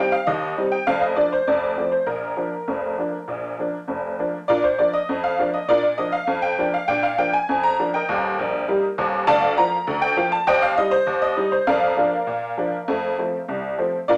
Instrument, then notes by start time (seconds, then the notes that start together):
honky-tonk piano
Already playing: G3 C4 G5
0.00 D#4
0.12 F5
0.27 D#2 D#3 D#5
0.57 G3 C4 D#4
0.72 G5
0.87 F1 F2 F5
1.02 D#5
1.16 F3 A#3 D4 D5
1.33 C5
1.47 F1 F2 D5
1.77 F3 A3 C4
1.92 C5
2.06 A#1 A#2 A#4
2.37 F3 A#3 D4
2.68 F1 F2
2.98 F3 A#3 D4
3.28 A#1 A#2
3.59 F3 A#3 D4
3.88 F1 F2
4.19 F3 A#3 D4
4.48 A#2 D4 F4 A#4 D5
4.64 C5
4.78 F3 A#3 D4 D5
4.93 D#5
5.09 F2
5.24 F5
5.39 F3 A#3 D4
5.54 D#5
5.68 A#2 D4 F4 A#4 D5
5.83 D5
5.98 F3 A#3 D4 D#5
6.12 F5
6.27 F2
6.42 G5
6.59 F3 A#3 D4
6.74 F5
6.88 A#2 D4 G5
7.03 F5
7.18 F3 A#3 D4 G5
7.33 G#5
7.49 F2
7.63 A#5
7.79 F3 A#3 D4
7.94 A#4 D#5 G5
8.09 D#1 D#2
8.39 A#1
8.68 G3 A#3 D#4
8.98 D#1 D#2
9.27 D2 D5 F5 A5
9.57 F3 A#3 F4 A#5
9.87 D2
10.02 G5
10.17 F3 A#3 F4
10.32 A5
10.47 D#2 C5 D#5 G5
10.62 F5
10.78 G3 D#4 D#5
10.91 C5
11.07 D#2
11.22 D#5
11.37 G3 D#4
11.52 C5
11.67 F2 A#4 D5 F5
11.97 F3 A#3 D4
12.27 A#2
12.57 F3 A#3 D4
12.88 F2 A3
13.19 F3 A3 C4
13.48 C2
13.78 F3 A3 C4
14.08 A#2 D4 F4 A#4 D5